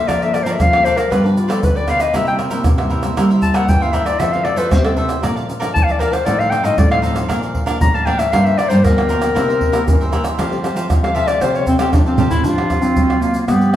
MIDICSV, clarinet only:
0, 0, Header, 1, 2, 480
1, 0, Start_track
1, 0, Key_signature, -1, "major"
1, 0, Tempo, 515464
1, 80, Time_signature, 4, 2, 24, 8
1, 12813, End_track
2, 0, Start_track
2, 0, Title_t, "Clarinet"
2, 0, Program_c, 0, 71
2, 74, Note_on_c, 0, 74, 83
2, 214, Note_on_c, 0, 76, 90
2, 227, Note_off_c, 0, 74, 0
2, 320, Note_on_c, 0, 74, 75
2, 334, Note_off_c, 0, 76, 0
2, 406, Note_on_c, 0, 72, 60
2, 420, Note_off_c, 0, 74, 0
2, 489, Note_on_c, 0, 76, 71
2, 503, Note_off_c, 0, 72, 0
2, 574, Note_on_c, 0, 77, 108
2, 588, Note_off_c, 0, 76, 0
2, 788, Note_on_c, 0, 72, 98
2, 802, Note_off_c, 0, 77, 0
2, 902, Note_on_c, 0, 70, 81
2, 916, Note_off_c, 0, 72, 0
2, 1037, Note_on_c, 0, 71, 78
2, 1050, Note_off_c, 0, 70, 0
2, 1167, Note_on_c, 0, 62, 62
2, 1181, Note_off_c, 0, 71, 0
2, 1276, Note_on_c, 0, 65, 68
2, 1290, Note_off_c, 0, 62, 0
2, 1396, Note_on_c, 0, 69, 78
2, 1410, Note_off_c, 0, 65, 0
2, 1529, Note_on_c, 0, 71, 71
2, 1543, Note_off_c, 0, 69, 0
2, 1646, Note_on_c, 0, 74, 74
2, 1660, Note_off_c, 0, 71, 0
2, 1763, Note_on_c, 0, 77, 93
2, 1777, Note_off_c, 0, 74, 0
2, 1875, Note_on_c, 0, 75, 88
2, 1889, Note_off_c, 0, 77, 0
2, 2005, Note_on_c, 0, 76, 84
2, 2019, Note_off_c, 0, 75, 0
2, 2116, Note_off_c, 0, 76, 0
2, 2122, Note_on_c, 0, 79, 84
2, 2192, Note_off_c, 0, 79, 0
2, 3191, Note_on_c, 0, 81, 82
2, 3308, Note_on_c, 0, 78, 89
2, 3322, Note_off_c, 0, 81, 0
2, 3438, Note_on_c, 0, 79, 103
2, 3452, Note_off_c, 0, 78, 0
2, 3562, Note_on_c, 0, 77, 70
2, 3576, Note_off_c, 0, 79, 0
2, 3652, Note_on_c, 0, 76, 76
2, 3666, Note_off_c, 0, 77, 0
2, 3779, Note_on_c, 0, 74, 95
2, 3793, Note_off_c, 0, 76, 0
2, 3903, Note_on_c, 0, 76, 82
2, 3917, Note_off_c, 0, 74, 0
2, 4030, Note_on_c, 0, 77, 85
2, 4044, Note_off_c, 0, 76, 0
2, 4139, Note_on_c, 0, 74, 80
2, 4153, Note_off_c, 0, 77, 0
2, 4265, Note_on_c, 0, 71, 74
2, 4279, Note_off_c, 0, 74, 0
2, 4387, Note_on_c, 0, 72, 85
2, 4401, Note_off_c, 0, 71, 0
2, 4512, Note_off_c, 0, 72, 0
2, 4518, Note_on_c, 0, 69, 76
2, 4590, Note_off_c, 0, 69, 0
2, 5347, Note_on_c, 0, 81, 89
2, 5433, Note_on_c, 0, 77, 83
2, 5447, Note_off_c, 0, 81, 0
2, 5510, Note_on_c, 0, 74, 73
2, 5524, Note_off_c, 0, 77, 0
2, 5586, Note_on_c, 0, 70, 89
2, 5600, Note_off_c, 0, 74, 0
2, 5708, Note_on_c, 0, 72, 84
2, 5722, Note_off_c, 0, 70, 0
2, 5828, Note_on_c, 0, 74, 83
2, 5842, Note_off_c, 0, 72, 0
2, 5955, Note_on_c, 0, 77, 90
2, 5969, Note_off_c, 0, 74, 0
2, 6055, Note_on_c, 0, 79, 91
2, 6069, Note_off_c, 0, 77, 0
2, 6189, Note_on_c, 0, 75, 80
2, 6203, Note_off_c, 0, 79, 0
2, 6316, Note_on_c, 0, 74, 87
2, 6330, Note_off_c, 0, 75, 0
2, 6435, Note_off_c, 0, 74, 0
2, 6440, Note_on_c, 0, 77, 86
2, 6510, Note_off_c, 0, 77, 0
2, 7277, Note_on_c, 0, 82, 87
2, 7403, Note_on_c, 0, 81, 82
2, 7417, Note_off_c, 0, 82, 0
2, 7505, Note_on_c, 0, 79, 97
2, 7519, Note_off_c, 0, 81, 0
2, 7627, Note_on_c, 0, 76, 89
2, 7641, Note_off_c, 0, 79, 0
2, 7752, Note_on_c, 0, 77, 90
2, 7766, Note_off_c, 0, 76, 0
2, 7868, Note_on_c, 0, 76, 93
2, 7882, Note_off_c, 0, 77, 0
2, 7988, Note_on_c, 0, 74, 90
2, 8002, Note_off_c, 0, 76, 0
2, 8091, Note_on_c, 0, 72, 82
2, 8105, Note_off_c, 0, 74, 0
2, 8233, Note_on_c, 0, 70, 92
2, 8247, Note_off_c, 0, 72, 0
2, 9674, Note_off_c, 0, 70, 0
2, 10276, Note_on_c, 0, 77, 82
2, 10379, Note_on_c, 0, 76, 107
2, 10393, Note_off_c, 0, 77, 0
2, 10498, Note_on_c, 0, 74, 94
2, 10512, Note_off_c, 0, 76, 0
2, 10634, Note_on_c, 0, 72, 76
2, 10648, Note_off_c, 0, 74, 0
2, 10766, Note_on_c, 0, 73, 79
2, 10779, Note_off_c, 0, 72, 0
2, 10869, Note_off_c, 0, 73, 0
2, 10875, Note_on_c, 0, 60, 84
2, 10979, Note_off_c, 0, 60, 0
2, 10984, Note_on_c, 0, 60, 78
2, 11111, Note_on_c, 0, 62, 97
2, 11125, Note_off_c, 0, 60, 0
2, 11228, Note_off_c, 0, 62, 0
2, 11234, Note_on_c, 0, 60, 71
2, 11453, Note_off_c, 0, 60, 0
2, 11459, Note_on_c, 0, 64, 97
2, 11592, Note_on_c, 0, 62, 92
2, 11606, Note_off_c, 0, 64, 0
2, 11937, Note_on_c, 0, 60, 80
2, 11951, Note_off_c, 0, 62, 0
2, 12303, Note_on_c, 0, 58, 86
2, 12317, Note_off_c, 0, 60, 0
2, 12542, Note_off_c, 0, 58, 0
2, 12548, Note_on_c, 0, 59, 85
2, 12774, Note_off_c, 0, 59, 0
2, 12780, Note_on_c, 0, 59, 78
2, 12813, Note_off_c, 0, 59, 0
2, 12813, End_track
0, 0, End_of_file